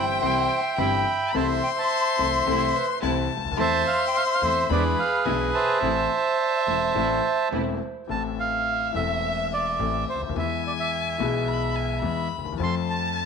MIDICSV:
0, 0, Header, 1, 7, 480
1, 0, Start_track
1, 0, Key_signature, 0, "minor"
1, 0, Tempo, 559180
1, 1156, Time_signature, 4, 2, 24, 8
1, 4990, Tempo, 564440
1, 11317, End_track
2, 0, Start_track
2, 0, Title_t, "Violin"
2, 0, Program_c, 0, 40
2, 0, Note_on_c, 0, 79, 90
2, 1149, Note_on_c, 0, 84, 118
2, 1162, Note_off_c, 0, 79, 0
2, 2593, Note_off_c, 0, 84, 0
2, 2597, Note_on_c, 0, 81, 84
2, 3063, Note_on_c, 0, 84, 110
2, 3076, Note_off_c, 0, 81, 0
2, 4028, Note_on_c, 0, 83, 82
2, 4041, Note_off_c, 0, 84, 0
2, 4505, Note_on_c, 0, 80, 74
2, 4518, Note_off_c, 0, 83, 0
2, 4984, Note_off_c, 0, 80, 0
2, 4989, Note_on_c, 0, 76, 80
2, 6650, Note_off_c, 0, 76, 0
2, 6927, Note_on_c, 0, 76, 83
2, 8857, Note_on_c, 0, 80, 86
2, 8870, Note_off_c, 0, 76, 0
2, 9807, Note_on_c, 0, 83, 78
2, 9819, Note_off_c, 0, 80, 0
2, 10041, Note_on_c, 0, 80, 73
2, 10054, Note_off_c, 0, 83, 0
2, 10260, Note_off_c, 0, 80, 0
2, 10265, Note_on_c, 0, 83, 76
2, 10715, Note_off_c, 0, 83, 0
2, 10761, Note_on_c, 0, 81, 100
2, 11317, Note_off_c, 0, 81, 0
2, 11317, End_track
3, 0, Start_track
3, 0, Title_t, "Bandoneon"
3, 0, Program_c, 1, 23
3, 0, Note_on_c, 1, 72, 53
3, 0, Note_on_c, 1, 76, 51
3, 0, Note_on_c, 1, 79, 59
3, 156, Note_off_c, 1, 79, 0
3, 188, Note_on_c, 1, 84, 72
3, 199, Note_off_c, 1, 76, 0
3, 209, Note_on_c, 1, 79, 50
3, 211, Note_on_c, 1, 76, 54
3, 517, Note_off_c, 1, 72, 0
3, 639, Note_off_c, 1, 84, 0
3, 672, Note_on_c, 1, 83, 73
3, 676, Note_off_c, 1, 79, 0
3, 679, Note_off_c, 1, 76, 0
3, 689, Note_on_c, 1, 79, 52
3, 692, Note_on_c, 1, 76, 51
3, 1130, Note_off_c, 1, 79, 0
3, 1131, Note_off_c, 1, 76, 0
3, 1157, Note_on_c, 1, 81, 72
3, 1169, Note_off_c, 1, 83, 0
3, 1169, Note_on_c, 1, 76, 54
3, 1172, Note_on_c, 1, 72, 59
3, 1265, Note_off_c, 1, 81, 0
3, 1403, Note_on_c, 1, 79, 60
3, 1456, Note_off_c, 1, 79, 0
3, 1528, Note_off_c, 1, 76, 0
3, 1532, Note_off_c, 1, 72, 0
3, 1533, Note_on_c, 1, 81, 63
3, 1541, Note_on_c, 1, 76, 51
3, 1545, Note_on_c, 1, 72, 46
3, 1973, Note_off_c, 1, 81, 0
3, 2455, Note_off_c, 1, 76, 0
3, 2458, Note_off_c, 1, 72, 0
3, 3086, Note_on_c, 1, 81, 94
3, 3092, Note_on_c, 1, 72, 69
3, 3094, Note_on_c, 1, 76, 72
3, 3303, Note_off_c, 1, 81, 0
3, 3322, Note_on_c, 1, 77, 79
3, 3478, Note_off_c, 1, 77, 0
3, 3500, Note_on_c, 1, 79, 70
3, 3570, Note_off_c, 1, 79, 0
3, 3573, Note_on_c, 1, 77, 72
3, 3638, Note_off_c, 1, 76, 0
3, 3645, Note_off_c, 1, 77, 0
3, 3651, Note_on_c, 1, 76, 67
3, 3722, Note_off_c, 1, 76, 0
3, 3726, Note_on_c, 1, 77, 70
3, 3798, Note_off_c, 1, 77, 0
3, 3809, Note_on_c, 1, 76, 80
3, 4006, Note_off_c, 1, 72, 0
3, 4024, Note_off_c, 1, 76, 0
3, 4049, Note_on_c, 1, 74, 65
3, 4051, Note_on_c, 1, 68, 57
3, 4051, Note_on_c, 1, 71, 52
3, 4152, Note_off_c, 1, 74, 0
3, 4285, Note_on_c, 1, 77, 78
3, 4501, Note_off_c, 1, 77, 0
3, 4516, Note_on_c, 1, 76, 66
3, 4623, Note_off_c, 1, 76, 0
3, 4757, Note_on_c, 1, 81, 84
3, 4761, Note_on_c, 1, 72, 62
3, 4765, Note_on_c, 1, 76, 58
3, 4967, Note_off_c, 1, 68, 0
3, 4967, Note_off_c, 1, 71, 0
3, 6410, Note_off_c, 1, 81, 0
3, 6412, Note_off_c, 1, 72, 0
3, 6414, Note_off_c, 1, 76, 0
3, 6941, Note_on_c, 1, 81, 70
3, 7046, Note_off_c, 1, 81, 0
3, 7187, Note_on_c, 1, 77, 67
3, 7626, Note_off_c, 1, 77, 0
3, 7663, Note_on_c, 1, 76, 75
3, 8106, Note_off_c, 1, 76, 0
3, 8151, Note_on_c, 1, 74, 65
3, 8590, Note_off_c, 1, 74, 0
3, 8630, Note_on_c, 1, 72, 63
3, 8734, Note_off_c, 1, 72, 0
3, 8878, Note_on_c, 1, 76, 69
3, 9088, Note_off_c, 1, 76, 0
3, 9120, Note_on_c, 1, 74, 59
3, 9167, Note_off_c, 1, 74, 0
3, 9228, Note_on_c, 1, 76, 67
3, 10491, Note_off_c, 1, 76, 0
3, 10788, Note_on_c, 1, 84, 92
3, 10889, Note_off_c, 1, 84, 0
3, 11017, Note_on_c, 1, 81, 80
3, 11317, Note_off_c, 1, 81, 0
3, 11317, End_track
4, 0, Start_track
4, 0, Title_t, "Flute"
4, 0, Program_c, 2, 73
4, 2122, Note_on_c, 2, 76, 92
4, 2360, Note_on_c, 2, 71, 81
4, 2372, Note_off_c, 2, 76, 0
4, 2591, Note_off_c, 2, 71, 0
4, 2596, Note_on_c, 2, 72, 62
4, 2929, Note_off_c, 2, 72, 0
4, 5231, Note_on_c, 2, 72, 73
4, 5472, Note_on_c, 2, 74, 84
4, 5485, Note_off_c, 2, 72, 0
4, 5706, Note_on_c, 2, 76, 78
4, 5718, Note_off_c, 2, 74, 0
4, 5941, Note_on_c, 2, 74, 86
4, 5954, Note_off_c, 2, 76, 0
4, 6179, Note_off_c, 2, 74, 0
4, 6184, Note_on_c, 2, 76, 81
4, 6426, Note_on_c, 2, 72, 68
4, 6439, Note_off_c, 2, 76, 0
4, 6920, Note_off_c, 2, 72, 0
4, 11317, End_track
5, 0, Start_track
5, 0, Title_t, "String section"
5, 0, Program_c, 3, 48
5, 0, Note_on_c, 3, 55, 37
5, 0, Note_on_c, 3, 60, 37
5, 0, Note_on_c, 3, 64, 43
5, 152, Note_off_c, 3, 55, 0
5, 152, Note_off_c, 3, 60, 0
5, 154, Note_off_c, 3, 64, 0
5, 185, Note_on_c, 3, 55, 72
5, 185, Note_on_c, 3, 60, 65
5, 189, Note_on_c, 3, 64, 78
5, 392, Note_off_c, 3, 55, 0
5, 392, Note_off_c, 3, 60, 0
5, 394, Note_off_c, 3, 64, 0
5, 670, Note_on_c, 3, 55, 69
5, 672, Note_on_c, 3, 60, 64
5, 672, Note_on_c, 3, 64, 78
5, 875, Note_off_c, 3, 55, 0
5, 876, Note_off_c, 3, 60, 0
5, 876, Note_off_c, 3, 64, 0
5, 1153, Note_on_c, 3, 57, 63
5, 1155, Note_on_c, 3, 60, 58
5, 1156, Note_on_c, 3, 64, 66
5, 1357, Note_off_c, 3, 57, 0
5, 1357, Note_off_c, 3, 60, 0
5, 1358, Note_off_c, 3, 64, 0
5, 1875, Note_on_c, 3, 57, 41
5, 1877, Note_on_c, 3, 60, 39
5, 1879, Note_on_c, 3, 64, 46
5, 2079, Note_off_c, 3, 57, 0
5, 2080, Note_off_c, 3, 60, 0
5, 2080, Note_off_c, 3, 64, 0
5, 2115, Note_on_c, 3, 57, 78
5, 2119, Note_on_c, 3, 60, 70
5, 2119, Note_on_c, 3, 64, 88
5, 2318, Note_off_c, 3, 57, 0
5, 2320, Note_off_c, 3, 60, 0
5, 2320, Note_off_c, 3, 64, 0
5, 2588, Note_on_c, 3, 57, 72
5, 2591, Note_on_c, 3, 60, 64
5, 2591, Note_on_c, 3, 64, 82
5, 2792, Note_off_c, 3, 57, 0
5, 2794, Note_off_c, 3, 60, 0
5, 2794, Note_off_c, 3, 64, 0
5, 3070, Note_on_c, 3, 57, 67
5, 3072, Note_on_c, 3, 60, 56
5, 3072, Note_on_c, 3, 64, 76
5, 3274, Note_off_c, 3, 57, 0
5, 3275, Note_off_c, 3, 60, 0
5, 3275, Note_off_c, 3, 64, 0
5, 3791, Note_on_c, 3, 57, 44
5, 3793, Note_on_c, 3, 64, 46
5, 3795, Note_on_c, 3, 60, 39
5, 3992, Note_off_c, 3, 57, 0
5, 3994, Note_off_c, 3, 64, 0
5, 3995, Note_off_c, 3, 60, 0
5, 4024, Note_on_c, 3, 56, 76
5, 4028, Note_on_c, 3, 62, 67
5, 4029, Note_on_c, 3, 64, 92
5, 4229, Note_off_c, 3, 56, 0
5, 4231, Note_off_c, 3, 62, 0
5, 4231, Note_off_c, 3, 64, 0
5, 4506, Note_on_c, 3, 56, 66
5, 4508, Note_on_c, 3, 62, 62
5, 4511, Note_on_c, 3, 64, 74
5, 4710, Note_off_c, 3, 56, 0
5, 4711, Note_off_c, 3, 62, 0
5, 4713, Note_off_c, 3, 64, 0
5, 4983, Note_on_c, 3, 57, 66
5, 4984, Note_on_c, 3, 60, 61
5, 4988, Note_on_c, 3, 64, 68
5, 5188, Note_off_c, 3, 57, 0
5, 5189, Note_off_c, 3, 60, 0
5, 5191, Note_off_c, 3, 64, 0
5, 5715, Note_on_c, 3, 57, 39
5, 5716, Note_on_c, 3, 60, 37
5, 5716, Note_on_c, 3, 64, 47
5, 5917, Note_off_c, 3, 57, 0
5, 5917, Note_off_c, 3, 60, 0
5, 5917, Note_off_c, 3, 64, 0
5, 5951, Note_on_c, 3, 57, 72
5, 5953, Note_on_c, 3, 60, 67
5, 5954, Note_on_c, 3, 64, 73
5, 6156, Note_off_c, 3, 57, 0
5, 6157, Note_off_c, 3, 60, 0
5, 6158, Note_off_c, 3, 64, 0
5, 6437, Note_on_c, 3, 60, 63
5, 6438, Note_on_c, 3, 57, 68
5, 6441, Note_on_c, 3, 64, 71
5, 6645, Note_off_c, 3, 57, 0
5, 6645, Note_off_c, 3, 60, 0
5, 6646, Note_off_c, 3, 64, 0
5, 11317, End_track
6, 0, Start_track
6, 0, Title_t, "Grand piano"
6, 0, Program_c, 4, 0
6, 0, Note_on_c, 4, 31, 47
6, 0, Note_on_c, 4, 43, 48
6, 0, Note_on_c, 4, 52, 40
6, 0, Note_on_c, 4, 55, 38
6, 0, Note_on_c, 4, 60, 36
6, 0, Note_on_c, 4, 67, 43
6, 147, Note_off_c, 4, 31, 0
6, 147, Note_off_c, 4, 43, 0
6, 148, Note_off_c, 4, 52, 0
6, 148, Note_off_c, 4, 60, 0
6, 149, Note_off_c, 4, 55, 0
6, 151, Note_off_c, 4, 67, 0
6, 185, Note_on_c, 4, 52, 61
6, 186, Note_on_c, 4, 55, 50
6, 187, Note_on_c, 4, 48, 71
6, 188, Note_on_c, 4, 36, 69
6, 189, Note_on_c, 4, 60, 50
6, 189, Note_on_c, 4, 67, 68
6, 392, Note_off_c, 4, 52, 0
6, 393, Note_off_c, 4, 48, 0
6, 393, Note_off_c, 4, 55, 0
6, 394, Note_off_c, 4, 36, 0
6, 394, Note_off_c, 4, 60, 0
6, 394, Note_off_c, 4, 67, 0
6, 673, Note_on_c, 4, 31, 65
6, 674, Note_on_c, 4, 43, 69
6, 676, Note_on_c, 4, 52, 57
6, 676, Note_on_c, 4, 60, 50
6, 678, Note_on_c, 4, 55, 48
6, 680, Note_on_c, 4, 67, 69
6, 876, Note_off_c, 4, 31, 0
6, 877, Note_off_c, 4, 43, 0
6, 878, Note_off_c, 4, 52, 0
6, 878, Note_off_c, 4, 60, 0
6, 879, Note_off_c, 4, 55, 0
6, 880, Note_off_c, 4, 67, 0
6, 1153, Note_on_c, 4, 36, 73
6, 1153, Note_on_c, 4, 52, 63
6, 1154, Note_on_c, 4, 57, 52
6, 1154, Note_on_c, 4, 60, 53
6, 1156, Note_on_c, 4, 48, 75
6, 1159, Note_on_c, 4, 69, 69
6, 1356, Note_off_c, 4, 36, 0
6, 1356, Note_off_c, 4, 52, 0
6, 1357, Note_off_c, 4, 57, 0
6, 1357, Note_off_c, 4, 60, 0
6, 1358, Note_off_c, 4, 48, 0
6, 1360, Note_off_c, 4, 69, 0
6, 1875, Note_on_c, 4, 52, 41
6, 1877, Note_on_c, 4, 36, 49
6, 1880, Note_on_c, 4, 48, 49
6, 1881, Note_on_c, 4, 57, 37
6, 1881, Note_on_c, 4, 60, 39
6, 1882, Note_on_c, 4, 69, 41
6, 2078, Note_off_c, 4, 52, 0
6, 2079, Note_off_c, 4, 36, 0
6, 2081, Note_off_c, 4, 48, 0
6, 2082, Note_off_c, 4, 57, 0
6, 2082, Note_off_c, 4, 60, 0
6, 2082, Note_off_c, 4, 69, 0
6, 2116, Note_on_c, 4, 36, 68
6, 2117, Note_on_c, 4, 57, 58
6, 2118, Note_on_c, 4, 48, 79
6, 2118, Note_on_c, 4, 52, 61
6, 2120, Note_on_c, 4, 60, 61
6, 2122, Note_on_c, 4, 69, 71
6, 2319, Note_off_c, 4, 36, 0
6, 2319, Note_off_c, 4, 57, 0
6, 2320, Note_off_c, 4, 48, 0
6, 2320, Note_off_c, 4, 52, 0
6, 2321, Note_off_c, 4, 60, 0
6, 2322, Note_off_c, 4, 69, 0
6, 2595, Note_on_c, 4, 36, 73
6, 2595, Note_on_c, 4, 48, 67
6, 2595, Note_on_c, 4, 57, 58
6, 2596, Note_on_c, 4, 52, 60
6, 2597, Note_on_c, 4, 60, 58
6, 2597, Note_on_c, 4, 69, 67
6, 2796, Note_off_c, 4, 36, 0
6, 2796, Note_off_c, 4, 48, 0
6, 2796, Note_off_c, 4, 52, 0
6, 2796, Note_off_c, 4, 57, 0
6, 2797, Note_off_c, 4, 60, 0
6, 2797, Note_off_c, 4, 69, 0
6, 2893, Note_on_c, 4, 37, 47
6, 2953, Note_off_c, 4, 37, 0
6, 2958, Note_on_c, 4, 38, 52
6, 3016, Note_off_c, 4, 38, 0
6, 3016, Note_on_c, 4, 39, 61
6, 3067, Note_on_c, 4, 52, 69
6, 3069, Note_on_c, 4, 57, 59
6, 3070, Note_on_c, 4, 40, 69
6, 3072, Note_on_c, 4, 60, 56
6, 3074, Note_on_c, 4, 69, 72
6, 3075, Note_off_c, 4, 39, 0
6, 3273, Note_off_c, 4, 57, 0
6, 3274, Note_off_c, 4, 40, 0
6, 3274, Note_off_c, 4, 52, 0
6, 3275, Note_off_c, 4, 60, 0
6, 3276, Note_off_c, 4, 69, 0
6, 3791, Note_on_c, 4, 52, 51
6, 3793, Note_on_c, 4, 57, 37
6, 3795, Note_on_c, 4, 40, 45
6, 3798, Note_on_c, 4, 60, 41
6, 3798, Note_on_c, 4, 69, 51
6, 3993, Note_off_c, 4, 57, 0
6, 3994, Note_off_c, 4, 40, 0
6, 3994, Note_off_c, 4, 52, 0
6, 3996, Note_off_c, 4, 60, 0
6, 3996, Note_off_c, 4, 69, 0
6, 4033, Note_on_c, 4, 52, 77
6, 4036, Note_on_c, 4, 62, 65
6, 4039, Note_on_c, 4, 59, 62
6, 4040, Note_on_c, 4, 40, 74
6, 4043, Note_on_c, 4, 68, 73
6, 4234, Note_off_c, 4, 62, 0
6, 4236, Note_off_c, 4, 40, 0
6, 4236, Note_off_c, 4, 52, 0
6, 4236, Note_off_c, 4, 59, 0
6, 4238, Note_off_c, 4, 68, 0
6, 4513, Note_on_c, 4, 47, 66
6, 4514, Note_on_c, 4, 52, 51
6, 4516, Note_on_c, 4, 59, 56
6, 4517, Note_on_c, 4, 35, 71
6, 4517, Note_on_c, 4, 62, 49
6, 4517, Note_on_c, 4, 68, 61
6, 4714, Note_off_c, 4, 47, 0
6, 4714, Note_off_c, 4, 52, 0
6, 4715, Note_off_c, 4, 59, 0
6, 4716, Note_off_c, 4, 35, 0
6, 4716, Note_off_c, 4, 62, 0
6, 4716, Note_off_c, 4, 68, 0
6, 4997, Note_on_c, 4, 57, 51
6, 4998, Note_on_c, 4, 52, 61
6, 5000, Note_on_c, 4, 69, 70
6, 5001, Note_on_c, 4, 33, 75
6, 5002, Note_on_c, 4, 60, 57
6, 5004, Note_on_c, 4, 45, 68
6, 5195, Note_off_c, 4, 57, 0
6, 5196, Note_off_c, 4, 52, 0
6, 5197, Note_off_c, 4, 33, 0
6, 5197, Note_off_c, 4, 69, 0
6, 5198, Note_off_c, 4, 45, 0
6, 5198, Note_off_c, 4, 60, 0
6, 5719, Note_on_c, 4, 52, 38
6, 5721, Note_on_c, 4, 57, 37
6, 5722, Note_on_c, 4, 28, 42
6, 5723, Note_on_c, 4, 40, 48
6, 5725, Note_on_c, 4, 60, 36
6, 5725, Note_on_c, 4, 69, 47
6, 5919, Note_off_c, 4, 52, 0
6, 5920, Note_off_c, 4, 28, 0
6, 5920, Note_off_c, 4, 57, 0
6, 5921, Note_off_c, 4, 40, 0
6, 5922, Note_off_c, 4, 60, 0
6, 5922, Note_off_c, 4, 69, 0
6, 5959, Note_on_c, 4, 52, 59
6, 5960, Note_on_c, 4, 57, 57
6, 5960, Note_on_c, 4, 60, 60
6, 5961, Note_on_c, 4, 33, 74
6, 5964, Note_on_c, 4, 45, 77
6, 5965, Note_on_c, 4, 69, 66
6, 6160, Note_off_c, 4, 52, 0
6, 6161, Note_off_c, 4, 33, 0
6, 6161, Note_off_c, 4, 57, 0
6, 6161, Note_off_c, 4, 60, 0
6, 6163, Note_off_c, 4, 45, 0
6, 6163, Note_off_c, 4, 69, 0
6, 6450, Note_on_c, 4, 40, 63
6, 6450, Note_on_c, 4, 52, 59
6, 6451, Note_on_c, 4, 57, 52
6, 6452, Note_on_c, 4, 28, 62
6, 6453, Note_on_c, 4, 60, 51
6, 6453, Note_on_c, 4, 69, 61
6, 6651, Note_off_c, 4, 40, 0
6, 6651, Note_off_c, 4, 52, 0
6, 6651, Note_off_c, 4, 57, 0
6, 6652, Note_off_c, 4, 28, 0
6, 6652, Note_off_c, 4, 60, 0
6, 6652, Note_off_c, 4, 69, 0
6, 6914, Note_on_c, 4, 52, 52
6, 6923, Note_on_c, 4, 57, 45
6, 6929, Note_on_c, 4, 45, 65
6, 6934, Note_on_c, 4, 33, 58
6, 6939, Note_on_c, 4, 60, 48
6, 6946, Note_on_c, 4, 69, 53
6, 7607, Note_off_c, 4, 52, 0
6, 7611, Note_off_c, 4, 57, 0
6, 7614, Note_off_c, 4, 45, 0
6, 7617, Note_off_c, 4, 33, 0
6, 7619, Note_off_c, 4, 60, 0
6, 7623, Note_off_c, 4, 69, 0
6, 7638, Note_on_c, 4, 52, 56
6, 7650, Note_on_c, 4, 57, 45
6, 7654, Note_on_c, 4, 28, 59
6, 7654, Note_on_c, 4, 40, 61
6, 7662, Note_on_c, 4, 60, 49
6, 7672, Note_on_c, 4, 69, 59
6, 8332, Note_off_c, 4, 52, 0
6, 8338, Note_off_c, 4, 57, 0
6, 8340, Note_off_c, 4, 28, 0
6, 8340, Note_off_c, 4, 40, 0
6, 8344, Note_off_c, 4, 60, 0
6, 8349, Note_off_c, 4, 69, 0
6, 8374, Note_on_c, 4, 52, 50
6, 8376, Note_on_c, 4, 33, 59
6, 8376, Note_on_c, 4, 45, 57
6, 8376, Note_on_c, 4, 60, 47
6, 8377, Note_on_c, 4, 57, 47
6, 8381, Note_on_c, 4, 69, 58
6, 8575, Note_off_c, 4, 52, 0
6, 8576, Note_off_c, 4, 33, 0
6, 8576, Note_off_c, 4, 45, 0
6, 8576, Note_off_c, 4, 60, 0
6, 8577, Note_off_c, 4, 57, 0
6, 8579, Note_off_c, 4, 69, 0
6, 8680, Note_on_c, 4, 37, 41
6, 8737, Note_off_c, 4, 37, 0
6, 8741, Note_on_c, 4, 38, 46
6, 8797, Note_off_c, 4, 38, 0
6, 8800, Note_on_c, 4, 39, 56
6, 8843, Note_on_c, 4, 52, 55
6, 8854, Note_on_c, 4, 56, 48
6, 8856, Note_off_c, 4, 39, 0
6, 8856, Note_off_c, 4, 52, 0
6, 8858, Note_on_c, 4, 40, 60
6, 8860, Note_on_c, 4, 52, 67
6, 8865, Note_on_c, 4, 59, 47
6, 8874, Note_on_c, 4, 68, 55
6, 9532, Note_off_c, 4, 56, 0
6, 9534, Note_off_c, 4, 40, 0
6, 9535, Note_off_c, 4, 52, 0
6, 9537, Note_off_c, 4, 59, 0
6, 9542, Note_off_c, 4, 68, 0
6, 9555, Note_on_c, 4, 52, 59
6, 9564, Note_on_c, 4, 56, 51
6, 9571, Note_on_c, 4, 35, 68
6, 9571, Note_on_c, 4, 47, 70
6, 9576, Note_on_c, 4, 59, 50
6, 9591, Note_on_c, 4, 68, 66
6, 10236, Note_off_c, 4, 52, 0
6, 10240, Note_off_c, 4, 56, 0
6, 10244, Note_off_c, 4, 35, 0
6, 10244, Note_off_c, 4, 47, 0
6, 10247, Note_off_c, 4, 59, 0
6, 10254, Note_off_c, 4, 68, 0
6, 10272, Note_on_c, 4, 56, 54
6, 10272, Note_on_c, 4, 59, 50
6, 10273, Note_on_c, 4, 52, 59
6, 10274, Note_on_c, 4, 40, 66
6, 10276, Note_on_c, 4, 68, 59
6, 10475, Note_off_c, 4, 52, 0
6, 10475, Note_off_c, 4, 56, 0
6, 10475, Note_off_c, 4, 59, 0
6, 10476, Note_off_c, 4, 40, 0
6, 10477, Note_off_c, 4, 68, 0
6, 10578, Note_on_c, 4, 38, 44
6, 10634, Note_on_c, 4, 39, 47
6, 10637, Note_off_c, 4, 38, 0
6, 10693, Note_on_c, 4, 40, 57
6, 10694, Note_off_c, 4, 39, 0
6, 10740, Note_on_c, 4, 53, 59
6, 10753, Note_off_c, 4, 53, 0
6, 10753, Note_on_c, 4, 57, 54
6, 10754, Note_off_c, 4, 40, 0
6, 10758, Note_on_c, 4, 53, 69
6, 10761, Note_on_c, 4, 41, 69
6, 10765, Note_on_c, 4, 60, 61
6, 10774, Note_on_c, 4, 69, 65
6, 11317, Note_off_c, 4, 41, 0
6, 11317, Note_off_c, 4, 53, 0
6, 11317, Note_off_c, 4, 57, 0
6, 11317, Note_off_c, 4, 60, 0
6, 11317, Note_off_c, 4, 69, 0
6, 11317, End_track
7, 0, Start_track
7, 0, Title_t, "Upright bass"
7, 0, Program_c, 5, 32
7, 0, Note_on_c, 5, 31, 54
7, 153, Note_off_c, 5, 31, 0
7, 185, Note_on_c, 5, 36, 70
7, 392, Note_off_c, 5, 36, 0
7, 672, Note_on_c, 5, 31, 85
7, 876, Note_off_c, 5, 31, 0
7, 1156, Note_on_c, 5, 36, 72
7, 1358, Note_off_c, 5, 36, 0
7, 1881, Note_on_c, 5, 36, 65
7, 2082, Note_off_c, 5, 36, 0
7, 2118, Note_on_c, 5, 36, 73
7, 2320, Note_off_c, 5, 36, 0
7, 2598, Note_on_c, 5, 36, 87
7, 2797, Note_off_c, 5, 36, 0
7, 2896, Note_on_c, 5, 37, 47
7, 2952, Note_off_c, 5, 37, 0
7, 2957, Note_on_c, 5, 38, 53
7, 3008, Note_off_c, 5, 38, 0
7, 3013, Note_on_c, 5, 39, 62
7, 3074, Note_off_c, 5, 39, 0
7, 3077, Note_on_c, 5, 40, 79
7, 3277, Note_off_c, 5, 40, 0
7, 3794, Note_on_c, 5, 40, 61
7, 3994, Note_off_c, 5, 40, 0
7, 4036, Note_on_c, 5, 40, 82
7, 4234, Note_off_c, 5, 40, 0
7, 4512, Note_on_c, 5, 35, 85
7, 4713, Note_off_c, 5, 35, 0
7, 4996, Note_on_c, 5, 33, 74
7, 5195, Note_off_c, 5, 33, 0
7, 5718, Note_on_c, 5, 28, 52
7, 5918, Note_off_c, 5, 28, 0
7, 5958, Note_on_c, 5, 33, 67
7, 6160, Note_off_c, 5, 33, 0
7, 6444, Note_on_c, 5, 28, 77
7, 6648, Note_off_c, 5, 28, 0
7, 6927, Note_on_c, 5, 33, 58
7, 7613, Note_off_c, 5, 33, 0
7, 7652, Note_on_c, 5, 28, 74
7, 8339, Note_off_c, 5, 28, 0
7, 8376, Note_on_c, 5, 33, 82
7, 8576, Note_off_c, 5, 33, 0
7, 8673, Note_on_c, 5, 37, 39
7, 8724, Note_off_c, 5, 37, 0
7, 8729, Note_on_c, 5, 38, 47
7, 8791, Note_off_c, 5, 38, 0
7, 8798, Note_on_c, 5, 39, 55
7, 8849, Note_off_c, 5, 39, 0
7, 8854, Note_on_c, 5, 40, 72
7, 9532, Note_off_c, 5, 40, 0
7, 9565, Note_on_c, 5, 35, 81
7, 10241, Note_off_c, 5, 35, 0
7, 10269, Note_on_c, 5, 40, 84
7, 10474, Note_off_c, 5, 40, 0
7, 10571, Note_on_c, 5, 38, 45
7, 10629, Note_off_c, 5, 38, 0
7, 10635, Note_on_c, 5, 39, 48
7, 10692, Note_off_c, 5, 39, 0
7, 10697, Note_on_c, 5, 40, 55
7, 10751, Note_off_c, 5, 40, 0
7, 10756, Note_on_c, 5, 41, 71
7, 11317, Note_off_c, 5, 41, 0
7, 11317, End_track
0, 0, End_of_file